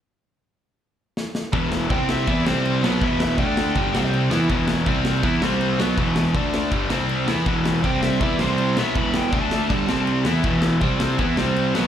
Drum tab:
CC |--------|x-x-x-x-|x-x-x-x-|x-x-x-x-|
SD |------oo|-o-o-o-o|-o-o-o-o|-o-o-o-o|
BD |--------|o-o-o---|o-o-o---|o-o-o---|

CC |x-x-x-x-|x-x-x-x-|x-x-x-x-|x-x-x-x-|
SD |-o-o-o-o|-o-o-o-o|-o-o-o-o|-o-o-o-o|
BD |o-o-o---|o-o-o---|o-o-o---|o-o-o---|